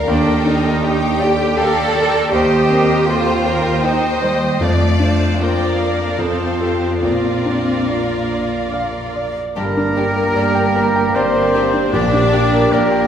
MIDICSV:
0, 0, Header, 1, 13, 480
1, 0, Start_track
1, 0, Key_signature, -2, "major"
1, 0, Tempo, 748130
1, 55, Time_signature, 3, 2, 24, 8
1, 1975, Tempo, 773196
1, 3415, Tempo, 814111
1, 4375, Tempo, 851064
1, 5813, Key_signature, -2, "minor"
1, 5815, Tempo, 786370
1, 7947, End_track
2, 0, Start_track
2, 0, Title_t, "Violin section"
2, 0, Program_c, 0, 48
2, 51, Note_on_c, 0, 79, 44
2, 526, Note_off_c, 0, 79, 0
2, 534, Note_on_c, 0, 79, 57
2, 1006, Note_off_c, 0, 79, 0
2, 1011, Note_on_c, 0, 77, 54
2, 1249, Note_off_c, 0, 77, 0
2, 1252, Note_on_c, 0, 79, 54
2, 1482, Note_off_c, 0, 79, 0
2, 1490, Note_on_c, 0, 79, 46
2, 2901, Note_off_c, 0, 79, 0
2, 2926, Note_on_c, 0, 77, 39
2, 3402, Note_off_c, 0, 77, 0
2, 3407, Note_on_c, 0, 79, 46
2, 3647, Note_on_c, 0, 77, 40
2, 3648, Note_off_c, 0, 79, 0
2, 4357, Note_off_c, 0, 77, 0
2, 4370, Note_on_c, 0, 77, 38
2, 5669, Note_off_c, 0, 77, 0
2, 5811, Note_on_c, 0, 70, 54
2, 6754, Note_off_c, 0, 70, 0
2, 6782, Note_on_c, 0, 72, 53
2, 7259, Note_off_c, 0, 72, 0
2, 7259, Note_on_c, 0, 74, 58
2, 7723, Note_off_c, 0, 74, 0
2, 7734, Note_on_c, 0, 70, 61
2, 7947, Note_off_c, 0, 70, 0
2, 7947, End_track
3, 0, Start_track
3, 0, Title_t, "Flute"
3, 0, Program_c, 1, 73
3, 5809, Note_on_c, 1, 70, 67
3, 6780, Note_on_c, 1, 72, 60
3, 6789, Note_off_c, 1, 70, 0
3, 7256, Note_off_c, 1, 72, 0
3, 7259, Note_on_c, 1, 74, 69
3, 7725, Note_on_c, 1, 70, 54
3, 7734, Note_off_c, 1, 74, 0
3, 7947, Note_off_c, 1, 70, 0
3, 7947, End_track
4, 0, Start_track
4, 0, Title_t, "Oboe"
4, 0, Program_c, 2, 68
4, 5811, Note_on_c, 2, 70, 67
4, 6775, Note_on_c, 2, 72, 65
4, 6784, Note_off_c, 2, 70, 0
4, 7250, Note_off_c, 2, 72, 0
4, 7254, Note_on_c, 2, 74, 71
4, 7734, Note_on_c, 2, 70, 69
4, 7743, Note_off_c, 2, 74, 0
4, 7947, Note_off_c, 2, 70, 0
4, 7947, End_track
5, 0, Start_track
5, 0, Title_t, "Viola section"
5, 0, Program_c, 3, 48
5, 56, Note_on_c, 3, 70, 50
5, 524, Note_off_c, 3, 70, 0
5, 533, Note_on_c, 3, 67, 53
5, 769, Note_off_c, 3, 67, 0
5, 774, Note_on_c, 3, 69, 55
5, 1015, Note_on_c, 3, 74, 46
5, 1016, Note_off_c, 3, 69, 0
5, 1017, Note_on_c, 3, 70, 51
5, 1495, Note_off_c, 3, 70, 0
5, 1495, Note_off_c, 3, 74, 0
5, 1496, Note_on_c, 3, 72, 46
5, 1497, Note_on_c, 3, 75, 49
5, 1965, Note_off_c, 3, 72, 0
5, 1965, Note_off_c, 3, 75, 0
5, 1973, Note_on_c, 3, 69, 56
5, 1973, Note_on_c, 3, 72, 49
5, 2205, Note_off_c, 3, 69, 0
5, 2211, Note_on_c, 3, 70, 56
5, 2445, Note_off_c, 3, 72, 0
5, 2450, Note_off_c, 3, 70, 0
5, 2453, Note_on_c, 3, 72, 43
5, 2455, Note_on_c, 3, 75, 47
5, 2929, Note_on_c, 3, 74, 36
5, 2930, Note_off_c, 3, 72, 0
5, 2931, Note_off_c, 3, 74, 0
5, 2931, Note_off_c, 3, 75, 0
5, 2931, Note_on_c, 3, 74, 45
5, 3169, Note_off_c, 3, 74, 0
5, 3174, Note_on_c, 3, 72, 48
5, 3411, Note_off_c, 3, 72, 0
5, 3416, Note_on_c, 3, 70, 44
5, 3417, Note_on_c, 3, 74, 45
5, 3880, Note_off_c, 3, 74, 0
5, 3889, Note_off_c, 3, 70, 0
5, 3889, Note_on_c, 3, 72, 42
5, 3891, Note_on_c, 3, 69, 45
5, 4122, Note_off_c, 3, 69, 0
5, 4129, Note_on_c, 3, 69, 42
5, 4370, Note_off_c, 3, 69, 0
5, 4372, Note_on_c, 3, 70, 36
5, 4373, Note_on_c, 3, 74, 37
5, 4374, Note_off_c, 3, 72, 0
5, 5670, Note_off_c, 3, 74, 0
5, 5692, Note_off_c, 3, 70, 0
5, 5811, Note_on_c, 3, 58, 59
5, 6754, Note_off_c, 3, 58, 0
5, 6774, Note_on_c, 3, 60, 63
5, 7255, Note_off_c, 3, 60, 0
5, 7256, Note_on_c, 3, 62, 67
5, 7729, Note_on_c, 3, 58, 59
5, 7731, Note_off_c, 3, 62, 0
5, 7947, Note_off_c, 3, 58, 0
5, 7947, End_track
6, 0, Start_track
6, 0, Title_t, "Grand piano"
6, 0, Program_c, 4, 0
6, 0, Control_c, 4, 64, 127
6, 0, Note_on_c, 4, 62, 50
6, 0, Note_on_c, 4, 65, 43
6, 0, Note_on_c, 4, 74, 46
6, 0, Note_on_c, 4, 77, 52
6, 50, Note_on_c, 4, 39, 58
6, 66, Control_c, 4, 64, 0
6, 67, Note_off_c, 4, 65, 0
6, 68, Note_off_c, 4, 74, 0
6, 68, Note_off_c, 4, 77, 0
6, 71, Note_off_c, 4, 62, 0
6, 178, Control_c, 4, 64, 127
6, 292, Note_on_c, 4, 62, 49
6, 531, Note_on_c, 4, 67, 47
6, 676, Note_off_c, 4, 62, 0
6, 767, Note_on_c, 4, 74, 46
6, 918, Note_off_c, 4, 67, 0
6, 1011, Note_on_c, 4, 79, 52
6, 1157, Note_off_c, 4, 74, 0
6, 1253, Note_on_c, 4, 74, 49
6, 1398, Note_off_c, 4, 79, 0
6, 1467, Note_off_c, 4, 39, 0
6, 1488, Note_on_c, 4, 39, 57
6, 1493, Note_off_c, 4, 74, 0
6, 1507, Control_c, 4, 64, 0
6, 1601, Control_c, 4, 64, 127
6, 1729, Note_on_c, 4, 60, 50
6, 1971, Note_on_c, 4, 67, 41
6, 2113, Note_off_c, 4, 60, 0
6, 2208, Note_on_c, 4, 72, 46
6, 2352, Note_off_c, 4, 67, 0
6, 2446, Note_on_c, 4, 79, 50
6, 2593, Note_off_c, 4, 72, 0
6, 2685, Note_on_c, 4, 72, 45
6, 2831, Note_off_c, 4, 79, 0
6, 2900, Note_off_c, 4, 39, 0
6, 2924, Note_on_c, 4, 41, 47
6, 2926, Note_off_c, 4, 72, 0
6, 2939, Control_c, 4, 64, 0
6, 3055, Control_c, 4, 64, 127
6, 3165, Note_on_c, 4, 62, 41
6, 3406, Note_on_c, 4, 65, 40
6, 3554, Note_off_c, 4, 62, 0
6, 3644, Note_on_c, 4, 74, 39
6, 3790, Note_off_c, 4, 65, 0
6, 3862, Note_off_c, 4, 41, 0
6, 3880, Note_on_c, 4, 41, 50
6, 3884, Note_off_c, 4, 74, 0
6, 3899, Control_c, 4, 64, 0
6, 4012, Control_c, 4, 64, 127
6, 4123, Note_on_c, 4, 65, 30
6, 4125, Note_on_c, 4, 69, 34
6, 4348, Note_off_c, 4, 65, 0
6, 4349, Note_off_c, 4, 69, 0
6, 4355, Note_off_c, 4, 41, 0
6, 4376, Note_on_c, 4, 46, 41
6, 4384, Control_c, 4, 64, 0
6, 4509, Control_c, 4, 64, 127
6, 4617, Note_on_c, 4, 62, 38
6, 4866, Note_on_c, 4, 65, 37
6, 5010, Note_off_c, 4, 62, 0
6, 5105, Note_on_c, 4, 74, 32
6, 5248, Note_off_c, 4, 65, 0
6, 5340, Note_on_c, 4, 77, 38
6, 5482, Note_off_c, 4, 74, 0
6, 5578, Note_on_c, 4, 74, 32
6, 5721, Note_off_c, 4, 77, 0
6, 5792, Note_off_c, 4, 46, 0
6, 5809, Note_on_c, 4, 43, 50
6, 5812, Note_off_c, 4, 74, 0
6, 5823, Control_c, 4, 64, 0
6, 5910, Control_c, 4, 64, 127
6, 5933, Note_on_c, 4, 62, 41
6, 6053, Note_on_c, 4, 67, 42
6, 6127, Note_off_c, 4, 62, 0
6, 6171, Note_on_c, 4, 70, 45
6, 6247, Note_off_c, 4, 67, 0
6, 6286, Note_on_c, 4, 74, 48
6, 6366, Note_off_c, 4, 70, 0
6, 6407, Note_on_c, 4, 79, 48
6, 6484, Note_off_c, 4, 74, 0
6, 6536, Note_on_c, 4, 82, 45
6, 6606, Note_off_c, 4, 79, 0
6, 6656, Note_on_c, 4, 79, 52
6, 6730, Note_off_c, 4, 82, 0
6, 6775, Note_on_c, 4, 74, 48
6, 6850, Note_off_c, 4, 79, 0
6, 6898, Note_on_c, 4, 70, 45
6, 6969, Note_off_c, 4, 74, 0
6, 7014, Note_on_c, 4, 67, 42
6, 7091, Note_off_c, 4, 70, 0
6, 7132, Note_on_c, 4, 62, 41
6, 7207, Note_off_c, 4, 67, 0
6, 7231, Note_off_c, 4, 43, 0
6, 7249, Note_on_c, 4, 34, 51
6, 7254, Note_off_c, 4, 62, 0
6, 7270, Control_c, 4, 64, 0
6, 7372, Note_on_c, 4, 62, 45
6, 7382, Control_c, 4, 64, 127
6, 7492, Note_on_c, 4, 67, 52
6, 7563, Note_off_c, 4, 62, 0
6, 7614, Note_on_c, 4, 70, 44
6, 7683, Note_off_c, 4, 67, 0
6, 7735, Note_on_c, 4, 74, 52
6, 7805, Note_off_c, 4, 70, 0
6, 7853, Note_on_c, 4, 79, 50
6, 7926, Note_off_c, 4, 74, 0
6, 7947, Note_off_c, 4, 34, 0
6, 7947, Note_off_c, 4, 79, 0
6, 7947, End_track
7, 0, Start_track
7, 0, Title_t, "Clarinet"
7, 0, Program_c, 5, 71
7, 5811, Note_on_c, 5, 67, 50
7, 7233, Note_off_c, 5, 67, 0
7, 7251, Note_on_c, 5, 67, 53
7, 7719, Note_off_c, 5, 67, 0
7, 7729, Note_on_c, 5, 67, 54
7, 7947, Note_off_c, 5, 67, 0
7, 7947, End_track
8, 0, Start_track
8, 0, Title_t, "Violin section"
8, 0, Program_c, 6, 48
8, 61, Note_on_c, 6, 69, 56
8, 534, Note_on_c, 6, 67, 60
8, 536, Note_off_c, 6, 69, 0
8, 1494, Note_on_c, 6, 72, 54
8, 1496, Note_off_c, 6, 67, 0
8, 1728, Note_off_c, 6, 72, 0
8, 1737, Note_on_c, 6, 70, 51
8, 1975, Note_off_c, 6, 70, 0
8, 1980, Note_on_c, 6, 72, 56
8, 2208, Note_on_c, 6, 70, 44
8, 2213, Note_off_c, 6, 72, 0
8, 2444, Note_off_c, 6, 70, 0
8, 2445, Note_on_c, 6, 72, 52
8, 2926, Note_off_c, 6, 72, 0
8, 2932, Note_on_c, 6, 74, 55
8, 3409, Note_on_c, 6, 72, 48
8, 3415, Note_off_c, 6, 74, 0
8, 3649, Note_off_c, 6, 72, 0
8, 3651, Note_on_c, 6, 70, 41
8, 3887, Note_off_c, 6, 70, 0
8, 3890, Note_on_c, 6, 69, 43
8, 4127, Note_off_c, 6, 69, 0
8, 4132, Note_on_c, 6, 67, 39
8, 4375, Note_on_c, 6, 65, 40
8, 4376, Note_off_c, 6, 67, 0
8, 5557, Note_off_c, 6, 65, 0
8, 5806, Note_on_c, 6, 62, 41
8, 5807, Note_on_c, 6, 67, 45
8, 5855, Note_off_c, 6, 62, 0
8, 5855, Note_off_c, 6, 67, 0
8, 6050, Note_on_c, 6, 62, 37
8, 6052, Note_on_c, 6, 67, 36
8, 6099, Note_off_c, 6, 62, 0
8, 6100, Note_off_c, 6, 67, 0
8, 6295, Note_on_c, 6, 62, 46
8, 6297, Note_on_c, 6, 67, 43
8, 6344, Note_off_c, 6, 62, 0
8, 6346, Note_off_c, 6, 67, 0
8, 6535, Note_on_c, 6, 62, 39
8, 6538, Note_on_c, 6, 67, 34
8, 6584, Note_off_c, 6, 62, 0
8, 6587, Note_off_c, 6, 67, 0
8, 6772, Note_on_c, 6, 62, 39
8, 6774, Note_on_c, 6, 67, 40
8, 6821, Note_off_c, 6, 62, 0
8, 6822, Note_off_c, 6, 67, 0
8, 7016, Note_on_c, 6, 67, 45
8, 7021, Note_on_c, 6, 62, 43
8, 7065, Note_off_c, 6, 67, 0
8, 7070, Note_off_c, 6, 62, 0
8, 7257, Note_on_c, 6, 62, 48
8, 7259, Note_on_c, 6, 67, 49
8, 7306, Note_off_c, 6, 62, 0
8, 7307, Note_off_c, 6, 67, 0
8, 7497, Note_on_c, 6, 62, 42
8, 7501, Note_on_c, 6, 67, 45
8, 7546, Note_off_c, 6, 62, 0
8, 7550, Note_off_c, 6, 67, 0
8, 7737, Note_on_c, 6, 67, 49
8, 7742, Note_on_c, 6, 62, 47
8, 7786, Note_off_c, 6, 67, 0
8, 7791, Note_off_c, 6, 62, 0
8, 7947, End_track
9, 0, Start_track
9, 0, Title_t, "French horn section"
9, 0, Program_c, 7, 60
9, 5809, Note_on_c, 7, 58, 55
9, 5811, Note_on_c, 7, 67, 55
9, 7947, Note_off_c, 7, 58, 0
9, 7947, Note_off_c, 7, 67, 0
9, 7947, End_track
10, 0, Start_track
10, 0, Title_t, "Cello section"
10, 0, Program_c, 8, 48
10, 51, Note_on_c, 8, 62, 71
10, 275, Note_off_c, 8, 62, 0
10, 294, Note_on_c, 8, 63, 71
10, 764, Note_off_c, 8, 63, 0
10, 772, Note_on_c, 8, 67, 73
10, 1011, Note_on_c, 8, 69, 83
10, 1015, Note_off_c, 8, 67, 0
10, 1492, Note_off_c, 8, 69, 0
10, 1497, Note_on_c, 8, 67, 71
10, 1965, Note_off_c, 8, 67, 0
10, 1974, Note_on_c, 8, 65, 72
10, 2450, Note_off_c, 8, 65, 0
10, 2452, Note_on_c, 8, 63, 64
10, 2691, Note_off_c, 8, 63, 0
10, 2691, Note_on_c, 8, 55, 61
10, 2928, Note_on_c, 8, 57, 60
10, 2929, Note_off_c, 8, 55, 0
10, 3403, Note_off_c, 8, 57, 0
10, 3408, Note_on_c, 8, 58, 57
10, 3884, Note_on_c, 8, 60, 58
10, 3885, Note_off_c, 8, 58, 0
10, 4367, Note_off_c, 8, 60, 0
10, 4374, Note_on_c, 8, 60, 58
10, 4856, Note_off_c, 8, 60, 0
10, 4865, Note_on_c, 8, 58, 45
10, 5341, Note_off_c, 8, 58, 0
10, 5809, Note_on_c, 8, 43, 54
10, 6238, Note_off_c, 8, 43, 0
10, 6291, Note_on_c, 8, 43, 54
10, 6720, Note_off_c, 8, 43, 0
10, 6778, Note_on_c, 8, 43, 51
10, 7201, Note_off_c, 8, 43, 0
10, 7256, Note_on_c, 8, 46, 57
10, 7674, Note_off_c, 8, 46, 0
10, 7726, Note_on_c, 8, 46, 58
10, 7947, Note_off_c, 8, 46, 0
10, 7947, End_track
11, 0, Start_track
11, 0, Title_t, "Bassoon"
11, 0, Program_c, 10, 70
11, 5813, Note_on_c, 10, 58, 43
11, 7233, Note_off_c, 10, 58, 0
11, 7262, Note_on_c, 10, 58, 40
11, 7724, Note_off_c, 10, 58, 0
11, 7741, Note_on_c, 10, 58, 49
11, 7947, Note_off_c, 10, 58, 0
11, 7947, End_track
12, 0, Start_track
12, 0, Title_t, "Timpani"
12, 0, Program_c, 11, 47
12, 7260, Note_on_c, 11, 46, 69
12, 7947, Note_off_c, 11, 46, 0
12, 7947, End_track
13, 0, Start_track
13, 0, Title_t, "Double bass section"
13, 0, Program_c, 12, 48
13, 54, Note_on_c, 12, 39, 50
13, 1469, Note_off_c, 12, 39, 0
13, 1491, Note_on_c, 12, 39, 50
13, 2902, Note_off_c, 12, 39, 0
13, 2927, Note_on_c, 12, 41, 44
13, 3868, Note_off_c, 12, 41, 0
13, 3888, Note_on_c, 12, 41, 42
13, 4364, Note_off_c, 12, 41, 0
13, 4369, Note_on_c, 12, 34, 40
13, 5691, Note_off_c, 12, 34, 0
13, 5810, Note_on_c, 12, 31, 50
13, 6238, Note_off_c, 12, 31, 0
13, 6291, Note_on_c, 12, 31, 44
13, 6720, Note_off_c, 12, 31, 0
13, 6773, Note_on_c, 12, 31, 53
13, 7198, Note_off_c, 12, 31, 0
13, 7249, Note_on_c, 12, 34, 57
13, 7671, Note_off_c, 12, 34, 0
13, 7723, Note_on_c, 12, 34, 49
13, 7947, Note_off_c, 12, 34, 0
13, 7947, End_track
0, 0, End_of_file